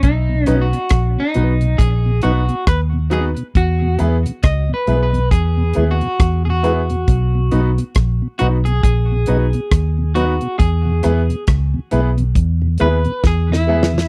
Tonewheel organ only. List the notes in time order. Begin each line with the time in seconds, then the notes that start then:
0.29 B2
0.47 F#3 B3 D#4
0.73 B2
1.17 B2
1.35 F#3 B3 D#4
1.61 B2
2.06 B2
2.23 F#3 B3 D#4
2.49 B2
2.93 B2
3.12 F#3 B3 D#4
3.37 B2
3.82 E2 B2
4.00 G#3 B3 E4
4.26 E2 B2
4.69 E2 B2
4.87 G#3 B3 E4
5.13 E2 B2
5.57 E2 B2
5.76 G#3 B3 E4
6.02 E2 B2
6.46 E2 B2
6.64 G#3 B3 E4
6.90 E2 B2
7.35 B2
7.52 F#3 B3 D#4
7.79 B2
8.22 B2
8.41 F#3 B3 D#4
8.67 B2
9.12 B2
9.29 F#3 B3 D#4
9.55 B2
9.98 B2
10.16 F#3 B3 D#4
10.42 B2
10.85 E2 B2
11.04 G#3 B3 E4
11.30 E2 B2
11.74 E2 B2
11.92 G#3 B3 E4
12.18 E2 B2
12.62 E2 B2
12.80 G#3 B3 E4
13.05 E2 B2
13.50 E2 B2
13.67 G#3 B3 E4
13.93 E2 B2